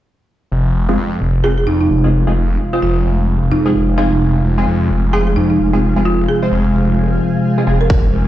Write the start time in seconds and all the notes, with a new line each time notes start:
0.51 F1 C3 F3 G#3 C4 F4
0.75 F1
0.89 G#3 C4 F4 G#4
0.98 F2
1.21 F1
1.44 G#3 C4 F4 G#4
1.58 G#4
1.67 F2 D#4 G#5
1.73 F5
1.81 D#4
1.90 F1
2.04 G#3 C4 F4 G#4
2.27 F1 G#3 C4 F4 G#4
2.73 G#3 C4 F4 C5
2.82 F1 F4
3.05 F1
3.43 F1
3.52 F2 D#4
3.66 G#3 C4 F4 G#4
3.75 F1
3.98 G#3 C4 D#4 F4 G#4
4.12 F1
4.21 F1
4.44 F1
4.58 G#3 C4 F4 G#4
4.67 F2
4.90 F1
5.13 G#3 C4 F4 G#4
5.27 G#4
5.36 F2 D#4
5.50 D#4
5.59 F1
5.73 G#3 C4 F4 G#4
5.96 F1 G#3 C4 F4 G#4
6.05 F4
6.29 G#4
6.42 G#3 C4 F4 C5
6.52 F1
6.75 F1
6.98 F1
7.58 G#3 C4 F4 G#4
7.67 F1 G#3 C4 F4 G#4
7.81 A#4
7.90 F1 D#4, kick
8.13 F1